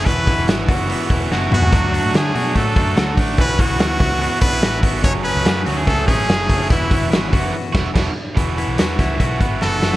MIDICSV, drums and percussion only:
0, 0, Header, 1, 2, 480
1, 0, Start_track
1, 0, Tempo, 415225
1, 69, Time_signature, 4, 2, 24, 8
1, 11520, End_track
2, 0, Start_track
2, 0, Title_t, "Drums"
2, 73, Note_on_c, 9, 44, 61
2, 73, Note_on_c, 9, 46, 90
2, 75, Note_on_c, 9, 36, 105
2, 188, Note_off_c, 9, 46, 0
2, 189, Note_off_c, 9, 44, 0
2, 191, Note_off_c, 9, 36, 0
2, 315, Note_on_c, 9, 36, 88
2, 321, Note_on_c, 9, 44, 63
2, 327, Note_on_c, 9, 46, 78
2, 431, Note_off_c, 9, 36, 0
2, 437, Note_off_c, 9, 44, 0
2, 443, Note_off_c, 9, 46, 0
2, 552, Note_on_c, 9, 46, 101
2, 554, Note_on_c, 9, 44, 69
2, 565, Note_on_c, 9, 38, 125
2, 668, Note_off_c, 9, 46, 0
2, 670, Note_off_c, 9, 44, 0
2, 680, Note_off_c, 9, 38, 0
2, 792, Note_on_c, 9, 36, 92
2, 796, Note_on_c, 9, 44, 64
2, 803, Note_on_c, 9, 46, 79
2, 908, Note_off_c, 9, 36, 0
2, 912, Note_off_c, 9, 44, 0
2, 919, Note_off_c, 9, 46, 0
2, 1033, Note_on_c, 9, 44, 64
2, 1036, Note_on_c, 9, 46, 93
2, 1149, Note_off_c, 9, 44, 0
2, 1151, Note_off_c, 9, 46, 0
2, 1273, Note_on_c, 9, 36, 87
2, 1277, Note_on_c, 9, 44, 62
2, 1280, Note_on_c, 9, 46, 66
2, 1389, Note_off_c, 9, 36, 0
2, 1393, Note_off_c, 9, 44, 0
2, 1396, Note_off_c, 9, 46, 0
2, 1523, Note_on_c, 9, 38, 58
2, 1639, Note_off_c, 9, 38, 0
2, 1755, Note_on_c, 9, 45, 88
2, 1870, Note_off_c, 9, 45, 0
2, 1874, Note_on_c, 9, 43, 94
2, 1990, Note_off_c, 9, 43, 0
2, 1991, Note_on_c, 9, 46, 95
2, 1992, Note_on_c, 9, 44, 70
2, 1995, Note_on_c, 9, 36, 108
2, 2107, Note_off_c, 9, 46, 0
2, 2108, Note_off_c, 9, 44, 0
2, 2111, Note_off_c, 9, 36, 0
2, 2237, Note_on_c, 9, 44, 65
2, 2243, Note_on_c, 9, 46, 81
2, 2353, Note_off_c, 9, 44, 0
2, 2359, Note_off_c, 9, 46, 0
2, 2476, Note_on_c, 9, 46, 93
2, 2479, Note_on_c, 9, 44, 67
2, 2489, Note_on_c, 9, 38, 121
2, 2592, Note_off_c, 9, 46, 0
2, 2594, Note_off_c, 9, 44, 0
2, 2605, Note_off_c, 9, 38, 0
2, 2715, Note_on_c, 9, 44, 66
2, 2722, Note_on_c, 9, 46, 80
2, 2831, Note_off_c, 9, 44, 0
2, 2838, Note_off_c, 9, 46, 0
2, 2952, Note_on_c, 9, 44, 59
2, 2954, Note_on_c, 9, 36, 69
2, 2954, Note_on_c, 9, 46, 88
2, 3068, Note_off_c, 9, 44, 0
2, 3069, Note_off_c, 9, 36, 0
2, 3070, Note_off_c, 9, 46, 0
2, 3193, Note_on_c, 9, 44, 58
2, 3194, Note_on_c, 9, 36, 97
2, 3196, Note_on_c, 9, 46, 68
2, 3309, Note_off_c, 9, 44, 0
2, 3310, Note_off_c, 9, 36, 0
2, 3312, Note_off_c, 9, 46, 0
2, 3430, Note_on_c, 9, 46, 77
2, 3432, Note_on_c, 9, 44, 65
2, 3439, Note_on_c, 9, 38, 99
2, 3545, Note_off_c, 9, 46, 0
2, 3547, Note_off_c, 9, 44, 0
2, 3554, Note_off_c, 9, 38, 0
2, 3670, Note_on_c, 9, 36, 89
2, 3671, Note_on_c, 9, 44, 59
2, 3672, Note_on_c, 9, 46, 74
2, 3786, Note_off_c, 9, 36, 0
2, 3786, Note_off_c, 9, 44, 0
2, 3787, Note_off_c, 9, 46, 0
2, 3911, Note_on_c, 9, 36, 110
2, 3912, Note_on_c, 9, 44, 65
2, 3912, Note_on_c, 9, 46, 89
2, 4027, Note_off_c, 9, 36, 0
2, 4027, Note_off_c, 9, 46, 0
2, 4028, Note_off_c, 9, 44, 0
2, 4145, Note_on_c, 9, 44, 70
2, 4149, Note_on_c, 9, 36, 91
2, 4151, Note_on_c, 9, 46, 83
2, 4261, Note_off_c, 9, 44, 0
2, 4264, Note_off_c, 9, 36, 0
2, 4266, Note_off_c, 9, 46, 0
2, 4384, Note_on_c, 9, 46, 103
2, 4386, Note_on_c, 9, 44, 62
2, 4396, Note_on_c, 9, 38, 114
2, 4499, Note_off_c, 9, 46, 0
2, 4502, Note_off_c, 9, 44, 0
2, 4512, Note_off_c, 9, 38, 0
2, 4623, Note_on_c, 9, 44, 64
2, 4627, Note_on_c, 9, 36, 93
2, 4629, Note_on_c, 9, 38, 34
2, 4630, Note_on_c, 9, 46, 77
2, 4738, Note_off_c, 9, 44, 0
2, 4742, Note_off_c, 9, 36, 0
2, 4745, Note_off_c, 9, 38, 0
2, 4745, Note_off_c, 9, 46, 0
2, 4867, Note_on_c, 9, 44, 62
2, 4869, Note_on_c, 9, 46, 96
2, 4982, Note_off_c, 9, 44, 0
2, 4984, Note_off_c, 9, 46, 0
2, 5105, Note_on_c, 9, 44, 67
2, 5107, Note_on_c, 9, 36, 89
2, 5108, Note_on_c, 9, 46, 75
2, 5221, Note_off_c, 9, 44, 0
2, 5222, Note_off_c, 9, 36, 0
2, 5224, Note_off_c, 9, 46, 0
2, 5342, Note_on_c, 9, 46, 88
2, 5344, Note_on_c, 9, 44, 66
2, 5351, Note_on_c, 9, 38, 112
2, 5458, Note_off_c, 9, 46, 0
2, 5460, Note_off_c, 9, 44, 0
2, 5467, Note_off_c, 9, 38, 0
2, 5582, Note_on_c, 9, 44, 64
2, 5583, Note_on_c, 9, 46, 67
2, 5585, Note_on_c, 9, 36, 91
2, 5697, Note_off_c, 9, 44, 0
2, 5698, Note_off_c, 9, 46, 0
2, 5700, Note_off_c, 9, 36, 0
2, 5821, Note_on_c, 9, 46, 90
2, 5822, Note_on_c, 9, 44, 62
2, 5826, Note_on_c, 9, 36, 107
2, 5937, Note_off_c, 9, 44, 0
2, 5937, Note_off_c, 9, 46, 0
2, 5942, Note_off_c, 9, 36, 0
2, 6064, Note_on_c, 9, 44, 67
2, 6069, Note_on_c, 9, 46, 86
2, 6179, Note_off_c, 9, 44, 0
2, 6185, Note_off_c, 9, 46, 0
2, 6303, Note_on_c, 9, 46, 102
2, 6305, Note_on_c, 9, 44, 68
2, 6315, Note_on_c, 9, 38, 123
2, 6418, Note_off_c, 9, 46, 0
2, 6421, Note_off_c, 9, 44, 0
2, 6431, Note_off_c, 9, 38, 0
2, 6541, Note_on_c, 9, 44, 66
2, 6547, Note_on_c, 9, 38, 34
2, 6548, Note_on_c, 9, 46, 78
2, 6657, Note_off_c, 9, 44, 0
2, 6663, Note_off_c, 9, 38, 0
2, 6664, Note_off_c, 9, 46, 0
2, 6787, Note_on_c, 9, 44, 58
2, 6789, Note_on_c, 9, 36, 77
2, 6789, Note_on_c, 9, 46, 84
2, 6903, Note_off_c, 9, 44, 0
2, 6905, Note_off_c, 9, 36, 0
2, 6905, Note_off_c, 9, 46, 0
2, 7028, Note_on_c, 9, 44, 65
2, 7029, Note_on_c, 9, 36, 91
2, 7031, Note_on_c, 9, 46, 69
2, 7144, Note_off_c, 9, 36, 0
2, 7144, Note_off_c, 9, 44, 0
2, 7147, Note_off_c, 9, 46, 0
2, 7271, Note_on_c, 9, 46, 81
2, 7273, Note_on_c, 9, 44, 71
2, 7280, Note_on_c, 9, 38, 110
2, 7387, Note_off_c, 9, 46, 0
2, 7389, Note_off_c, 9, 44, 0
2, 7396, Note_off_c, 9, 38, 0
2, 7508, Note_on_c, 9, 44, 61
2, 7509, Note_on_c, 9, 36, 84
2, 7509, Note_on_c, 9, 46, 67
2, 7624, Note_off_c, 9, 36, 0
2, 7624, Note_off_c, 9, 44, 0
2, 7625, Note_off_c, 9, 46, 0
2, 7747, Note_on_c, 9, 46, 92
2, 7748, Note_on_c, 9, 44, 66
2, 7750, Note_on_c, 9, 36, 101
2, 7863, Note_off_c, 9, 46, 0
2, 7864, Note_off_c, 9, 44, 0
2, 7866, Note_off_c, 9, 36, 0
2, 7988, Note_on_c, 9, 44, 65
2, 7989, Note_on_c, 9, 36, 86
2, 7994, Note_on_c, 9, 46, 87
2, 8104, Note_off_c, 9, 44, 0
2, 8105, Note_off_c, 9, 36, 0
2, 8110, Note_off_c, 9, 46, 0
2, 8233, Note_on_c, 9, 46, 92
2, 8236, Note_on_c, 9, 44, 67
2, 8246, Note_on_c, 9, 38, 120
2, 8349, Note_off_c, 9, 46, 0
2, 8352, Note_off_c, 9, 44, 0
2, 8362, Note_off_c, 9, 38, 0
2, 8473, Note_on_c, 9, 36, 89
2, 8475, Note_on_c, 9, 44, 63
2, 8482, Note_on_c, 9, 46, 74
2, 8589, Note_off_c, 9, 36, 0
2, 8590, Note_off_c, 9, 44, 0
2, 8597, Note_off_c, 9, 46, 0
2, 8955, Note_on_c, 9, 49, 76
2, 8956, Note_on_c, 9, 36, 112
2, 8959, Note_on_c, 9, 38, 112
2, 9070, Note_off_c, 9, 49, 0
2, 9071, Note_off_c, 9, 36, 0
2, 9075, Note_off_c, 9, 38, 0
2, 9196, Note_on_c, 9, 36, 115
2, 9198, Note_on_c, 9, 49, 82
2, 9203, Note_on_c, 9, 38, 95
2, 9312, Note_off_c, 9, 36, 0
2, 9314, Note_off_c, 9, 49, 0
2, 9319, Note_off_c, 9, 38, 0
2, 9676, Note_on_c, 9, 36, 90
2, 9677, Note_on_c, 9, 42, 82
2, 9791, Note_off_c, 9, 36, 0
2, 9793, Note_off_c, 9, 42, 0
2, 9919, Note_on_c, 9, 42, 76
2, 10034, Note_off_c, 9, 42, 0
2, 10150, Note_on_c, 9, 42, 91
2, 10163, Note_on_c, 9, 38, 110
2, 10265, Note_off_c, 9, 42, 0
2, 10278, Note_off_c, 9, 38, 0
2, 10393, Note_on_c, 9, 36, 85
2, 10394, Note_on_c, 9, 38, 37
2, 10395, Note_on_c, 9, 42, 77
2, 10508, Note_off_c, 9, 36, 0
2, 10510, Note_off_c, 9, 38, 0
2, 10510, Note_off_c, 9, 42, 0
2, 10634, Note_on_c, 9, 42, 75
2, 10635, Note_on_c, 9, 36, 72
2, 10749, Note_off_c, 9, 42, 0
2, 10750, Note_off_c, 9, 36, 0
2, 10873, Note_on_c, 9, 36, 81
2, 10877, Note_on_c, 9, 42, 69
2, 10989, Note_off_c, 9, 36, 0
2, 10993, Note_off_c, 9, 42, 0
2, 11116, Note_on_c, 9, 38, 55
2, 11231, Note_off_c, 9, 38, 0
2, 11356, Note_on_c, 9, 38, 77
2, 11472, Note_off_c, 9, 38, 0
2, 11484, Note_on_c, 9, 38, 72
2, 11520, Note_off_c, 9, 38, 0
2, 11520, End_track
0, 0, End_of_file